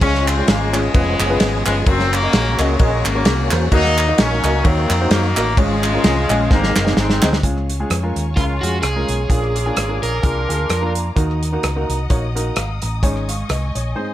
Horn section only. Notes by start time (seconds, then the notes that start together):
0.01 F3 G#3 C#4
0.27 C4
0.48 A#3
0.74 B2 C#3 G#3
1.66 G#3
1.87 F#3 C4
2.13 C#3 F#3 A#3
2.59 G#3
2.80 C#3 G#3
3.06 C#3 F#3 A#3
3.72 F#3 A#3 D#4
4.18 F#3 A#3 C#4
4.64 D#3 F#3 C4
5.11 D#3 F#3 A#3
5.58 C#3 F3 G#3
6.51 D#3 A#3
6.98 D#3 G#3 C4
8.37 G#3 C#4 F4
8.83 C#4 F4 G#4
10.21 D4 F4 A#4